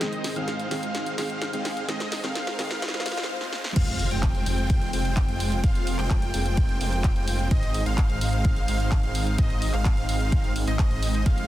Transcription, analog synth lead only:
0.01 0.33 D#5 loud
0.36 0.69 F5 loud
0.71 1.15 F5 loud
1.18 1.51 F5 loud
1.53 1.86 F5 medium
1.89 2.21 D#5 loud
2.24 2.56 F5 loud
2.59 3.03 F5 loud
3.06 3.29 F5 loud
3.76 4.08 F5 loud
4.11 4.44 G5 loud
4.46 4.90 G5 loud
4.93 5.26 G5 loud
5.28 5.61 G5 medium
5.64 5.96 F5 loud
5.99 6.31 G5 loud
6.34 6.78 G5 loud
6.81 7.13 G5 loud
7.16 7.48 G5 medium
7.51 7.83 D#5 loud
7.86 8.19 F5 loud
8.21 8.65 F5 loud
8.68 9.01 F5 loud
9.03 9.36 F5 medium
9.39 9.71 D#5 loud
9.74 10.06 F5 loud
10.09 10.53 F5 loud
10.67 10.76 D#5 loud
10.79 11.23 D#5 medium
11.26 11.47 F5 loud

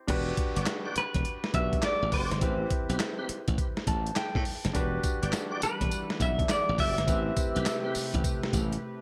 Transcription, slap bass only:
0.09 0.31 E1 loud
0.56 0.64 G1 medium
0.96 muted slap bass stroke soft
1.15 1.23 E1 medium
1.54 1.77 B1 medium
2.02 2.10 A1 medium
2.12 2.27 F#1 medium
2.31 2.39 G1 medium
2.41 2.64 A1 loud
2.89 2.97 B1 medium
3.29 muted slap bass stroke soft
3.48 3.56 A1 medium
3.87 4.10 A1 medium
4.35 4.43 A2 loud
4.65 4.73 F#1 loud
4.75 4.98 E1 medium
5.23 5.31 G1 loud
5.63 muted slap bass stroke soft
5.81 5.89 E1 medium
6.20 6.43 B1 medium
6.69 6.77 A1 medium
6.79 6.93 F#1 medium
6.98 7.06 G1 loud
7.08 7.31 A1 medium
7.56 7.64 B1 medium
7.96 muted slap bass stroke soft
8.14 8.22 A1 loud
8.53 8.76 A1 medium

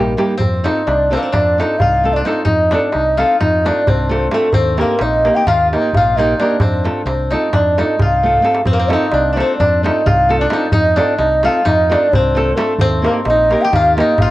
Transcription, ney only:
0.00 0.15 A#4 loud
0.38 0.67 C5 medium
0.66 0.88 D#5 medium
0.87 1.14 D5 medium
1.12 1.18 C5 medium
1.16 1.22 A#4 medium
1.20 1.34 C5 medium
1.33 1.61 D5 loud
1.59 1.80 D#5 medium
1.79 2.15 F5 loud
2.13 2.22 D5 medium
2.23 2.44 D#5 medium
2.45 2.74 D#5 medium
2.72 2.94 D5 medium
2.92 3.19 D#5 loud
3.18 3.40 F5 loud
3.40 3.69 D#5 loud
3.67 3.91 D5 medium
3.89 4.35 C5 medium
4.34 4.55 A4 medium
4.54 4.80 C5 loud
4.78 5.04 A#4 medium
5.02 5.36 D#5 loud
5.35 5.48 G5 loud
5.47 5.71 F5 loud
5.72 5.96 D#5 medium
5.95 6.18 F5 loud
6.16 6.38 D#5 loud
6.38 6.58 D5 medium
6.60 6.84 C5 loud
7.07 7.34 C5 medium
7.32 7.57 D#5 medium
7.56 7.83 D5 medium
7.82 8.02 D#5 medium
8.03 8.63 F5 loud
8.66 8.74 C5 medium
8.72 8.81 A#4 medium
8.80 8.90 C5 medium
8.89 9.12 D#5 medium
9.11 9.29 D5 medium
9.29 9.37 D5 medium
9.36 9.57 C5 loud
9.57 9.82 D5 medium
9.84 10.09 D#5 medium
10.08 10.39 F5 loud
10.39 10.52 D5 medium
10.50 10.71 D#5 medium
10.71 10.98 D#5 loud
10.97 11.17 D5 medium
11.17 11.46 D#5 loud
11.45 11.68 F5 medium
11.67 11.93 D#5 loud
11.92 12.14 D5 medium
12.13 12.58 C5 loud
12.56 12.78 A4 medium
12.79 13.02 C5 loud
13.04 13.10 A#4 medium
13.25 13.63 D#5 loud
13.62 13.75 G5 loud
13.74 13.97 F5 loud
13.97 14.21 D#5 medium
14.20 14.30 F5 loud

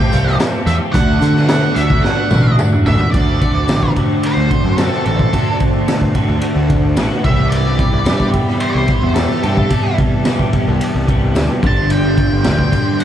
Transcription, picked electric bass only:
0.13 0.36 C2 medium
0.66 0.78 E2 loud
0.94 1.18 D2 loud
1.22 1.69 D3 medium
1.76 2.00 D2 medium
2.31 2.55 A1 medium
2.85 2.97 A1 loud
3.15 3.37 D2 loud
3.54 3.68 D2 medium
3.68 3.91 A1 medium
4.37 4.48 D2 medium
4.65 4.88 F#2 medium
5.06 5.29 A1 medium
6.29 6.40 D2 medium
6.55 6.97 D2 medium
6.97 7.09 A1 loud
7.25 7.83 C2 medium
7.93 8.08 C2 medium
8.06 8.30 G2 medium
8.75 8.87 C2 medium
9.03 9.26 E2 medium
9.44 9.67 G2 medium
10.68 10.79 C2 medium
10.95 11.37 C2 medium
11.37 11.48 D2 medium
11.63 12.22 G1 medium
12.32 12.47 G1 medium
12.46 12.69 D2 medium

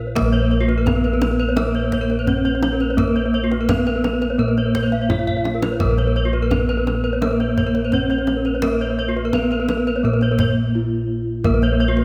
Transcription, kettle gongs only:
0.00 0.82 A#2 medium
0.16 2.23 A#4 medium
0.21 4.38 A#1 medium
0.86 0.94 B3 soft
2.27 2.35 B3 soft
2.97 5.06 A#4 medium
3.68 3.76 B3 soft
4.38 6.47 A#2 medium
5.09 5.17 B3 soft
5.80 7.88 A#4 medium
5.84 10.02 A#1 medium
6.51 6.59 B3 soft
7.92 8.00 B3 soft
8.63 10.70 A#4 medium
9.34 9.42 B3 soft
10.04 12.05 A#2 medium
10.74 10.82 B3 soft
11.44 12.05 A#4 medium
11.49 12.05 A#1 medium

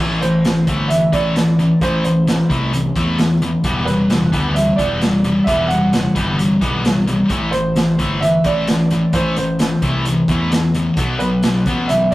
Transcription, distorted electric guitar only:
0.00 0.20 A2 medium
0.00 0.20 E3 medium
0.00 0.20 A3 medium
0.22 0.42 A2 medium
0.22 0.42 E3 medium
0.45 0.65 A2 medium
0.45 0.65 E3 medium
0.67 0.89 A2 medium
0.67 0.89 E3 medium
0.67 0.89 A3 medium
0.90 1.10 A2 medium
0.90 1.11 E3 medium
1.12 1.34 A2 medium
1.12 1.34 E3 medium
1.12 1.35 A3 medium
1.36 1.56 A2 medium
1.36 1.56 E3 medium
1.59 1.79 A2 soft
1.59 1.79 E3 medium
1.82 2.03 A2 medium
1.82 2.03 E3 medium
1.82 2.04 A3 medium
2.05 2.25 A2 medium
2.05 2.25 E3 medium
2.27 2.48 A2 medium
2.27 2.48 E3 medium
2.50 2.71 A2 medium
2.50 2.72 E3 medium
2.50 2.72 A3 medium
2.73 2.93 A2 medium
2.73 2.94 E3 medium
2.96 3.17 A2 medium
2.96 3.18 E3 medium
2.96 3.18 A3 medium
3.18 3.39 A2 medium
3.18 3.39 E3 medium
3.42 3.62 A2 medium
3.42 3.63 E3 medium
3.64 3.86 E3 medium
3.64 3.86 G3 medium
3.64 3.86 B3 medium
3.87 4.08 E3 medium
3.87 4.08 G3 medium
4.10 4.31 E3 medium
4.10 4.31 G3 medium
4.32 4.54 E3 medium
4.32 4.54 G3 medium
4.32 4.55 B3 medium
4.56 4.76 E3 medium
4.56 4.77 G3 medium
4.78 5.00 E3 medium
4.78 5.00 G3 medium
4.78 5.01 B3 medium
5.02 5.22 E3 medium
5.02 5.22 G3 medium
5.24 5.45 E3 medium
5.24 5.45 G3 medium
5.47 5.69 E3 medium
5.47 5.69 G3 medium
5.47 5.69 B3 medium
5.70 5.91 E3 medium
5.70 5.91 G3 medium
5.93 6.14 E3 medium
5.93 6.14 G3 medium
6.15 6.37 E3 medium
6.15 6.38 G3 medium
6.15 6.38 B3 medium
6.39 6.60 E3 medium
6.39 6.60 G3 medium
6.61 6.83 E3 medium
6.61 6.83 G3 medium
6.61 6.84 B3 medium
6.85 7.05 E3 medium
6.85 7.05 G3 medium
7.08 7.28 E3 medium
7.08 7.28 G3 medium
7.31 7.52 A2 medium
7.31 7.52 E3 medium
7.31 7.53 A3 medium
7.53 7.74 A2 medium
7.53 7.74 E3 medium
7.76 7.97 A2 medium
7.76 7.97 E3 medium
7.99 8.21 A2 medium
7.99 8.21 E3 medium
7.99 8.21 A3 medium
8.22 8.43 A2 medium
8.22 8.43 E3 medium
8.44 8.66 A2 medium
8.44 8.67 E3 medium
8.44 8.67 A3 medium
8.69 8.89 A2 medium
8.69 8.89 E3 medium
8.91 9.12 A2 medium
8.91 9.12 E3 medium
9.13 9.35 A2 medium
9.13 9.36 E3 medium
9.13 9.36 A3 medium
9.37 9.58 A2 medium
9.37 9.58 E3 medium
9.60 9.80 A2 medium
9.60 9.81 E3 medium
9.82 10.04 A2 medium
9.82 10.04 E3 medium
9.82 10.05 A3 medium
10.06 10.27 A2 medium
10.06 10.27 E3 medium
10.29 10.50 A2 medium
10.29 10.51 E3 medium
10.29 10.51 A3 medium
10.52 10.73 A2 medium
10.52 10.73 E3 medium
10.75 10.96 A2 medium
10.75 10.96 E3 medium
10.97 11.19 B2 medium
10.97 11.19 F#3 medium
10.97 11.20 B3 medium
11.21 11.41 B2 medium
11.21 11.42 F#3 medium
11.44 11.64 B2 medium
11.44 11.64 F#3 medium
11.67 11.88 B2 medium
11.67 11.89 F#3 medium
11.67 11.89 B3 medium
11.90 12.11 B2 medium
11.90 12.11 F#3 medium

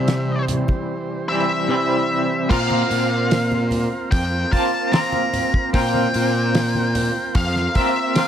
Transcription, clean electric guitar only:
0.00 1.26 C3 medium
0.00 1.27 E3 medium
0.00 1.27 G3 medium
0.00 1.27 C4 loud
0.00 1.27 E4 loud
1.28 1.67 C3 medium
1.28 1.68 E3 medium
1.28 1.68 G3 medium
1.28 1.67 C4 medium
1.28 1.67 E4 medium
1.68 2.47 C3 medium
1.68 2.48 E3 medium
1.68 2.48 G3 medium
1.68 2.48 C4 medium
1.68 2.49 E4 medium
2.49 4.49 A#3 medium
2.49 4.53 C4 medium
2.49 4.50 F4 medium
2.49 4.50 A#4 loud
4.51 4.91 A#3 medium
4.51 4.93 C4 medium
4.51 4.90 F4 medium
4.51 4.90 A#4 medium
4.92 5.71 A#3 medium
4.92 5.74 C4 medium
4.92 5.72 F4 medium
4.92 5.72 A#4 medium
5.73 7.73 A#3 medium
5.73 7.77 C4 loud
5.73 7.74 F4 loud
5.73 7.74 A#4 loud
7.75 8.14 A#3 medium
7.75 8.16 C4 medium
7.75 8.14 F4 medium
7.75 8.13 A#4 medium
8.15 8.28 A#3 medium
8.15 8.28 C4 medium
8.15 8.28 F4 medium
8.15 8.28 A#4 medium

